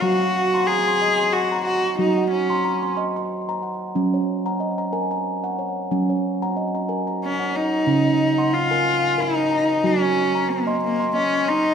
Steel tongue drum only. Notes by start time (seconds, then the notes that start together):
Already playing: C#5
0.02 F#3 F#4
0.21 F#5
0.54 A#5 C6
0.69 A#5
0.88 C6
1.02 D#5
1.19 C6
1.52 A#5
1.67 F#5
1.99 F#3 F#4
2.18 F#5
2.50 A#5 C6
2.65 A#5
2.82 C6
2.97 D#5 C6
3.16 C6
3.49 A#5
3.63 F#5
3.95 F#3 C#4
4.14 C#5
4.46 F#5 A#5
4.60 D#5
4.78 A#5
4.93 A#4 G#5
5.11 A#5
5.44 F#5
5.59 C#5
5.91 F#3 C#4
6.10 C#5
6.42 F#5 A#5
6.57 D#5
6.75 A#5
6.89 A#4 G#5
7.07 A#5
7.39 F#5
7.54 C#5
7.87 C#3 C#4
8.05 D#5
8.38 F#5 C6
8.71 A#4 G#5
9.04 G#5
9.18 A#4
9.37 D#5
9.51 A#5
9.84 F#3 F#4
10.02 G#5
10.35 A#5
10.67 D#5 C6
11.00 C6
11.15 D#5
11.34 G#5
11.48 C6